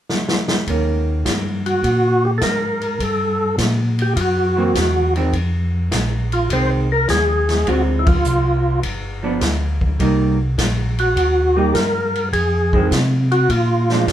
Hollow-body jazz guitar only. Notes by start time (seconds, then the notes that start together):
0.69 D#3 A#3 C#4
4.57 E3 A#3 C4
5.16 D#3 G#3 C4
6.51 D#3 G#3 C4
7.67 D3 G#3 C4 F4
9.23 F3 B3 D4
10.00 G3 A#3 D#4
11.56 G3 A#3 D#4
12.74 D#3 G#3 C4
13.91 F3 G#3 D4